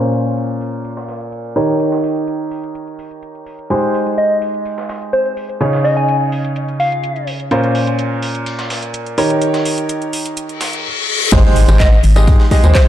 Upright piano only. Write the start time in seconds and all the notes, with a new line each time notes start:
Already playing: A#2 C#4 F4 A#4 C5
1.56 D#3 D#4 G4 A#4 C#5
3.70 G#3 D#4 G4 G#4 C5
5.61 C#3 C#4 D#4 G#4 C#5
7.51 A#2 C#4 F4 A#4 C5
9.18 D#3 D#4 G4 A#4 C#5
11.32 G#3 D#4 G4 G#4 C5
11.68 G#3 D#4 G4 G#4 C5
12.16 G#3 D#4 G4 G#4 D#5
12.51 G#3 D#4 G4 G#4 D#5
12.64 G#3 D#4 G4 G#4 C5